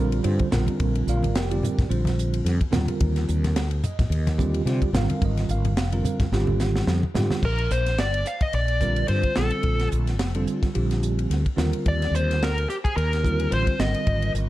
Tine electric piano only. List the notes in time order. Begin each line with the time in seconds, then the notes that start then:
Already playing: D3 C4 F4 A#4
0.00 G3
0.23 D3 G3 C4 F4 C5
0.51 D3 G3 C4 F4 A#4
1.09 F4 A#4 D5 F5
1.37 G4 A#4 D5 G5
1.50 D3 G3 C4 F4 G4
1.89 D3 G3 C4 F4 C5
2.71 D3 G3 C4 F4 A#4
3.85 D#5
4.38 D3 G3 C4 F4 G4
4.66 D3 G3 C4 F4 G4 D5
4.93 D3 G3 C4 F4 A#4 F5
5.25 D#5
5.51 F5
5.92 D3 G3 C4 F4 A#4
6.33 D3 G3 C4 F4 G4
7.15 D3 G3 C4 F4 G4
8.80 D3 G3 C4 F4 A#4
9.09 D3 G3 C4 F4 C5
9.35 D3 G3 C4 F4 A4
10.35 D3 G3 C4 F4 A4
10.74 D3 G3 C4 F4 G4
11.56 D3 G3 C4 F4 A#4
13.23 D3 G3 C4 F4 A#4
13.50 D3 G3 C4 F4 C5
13.79 D3 G3 C4 F4 A#4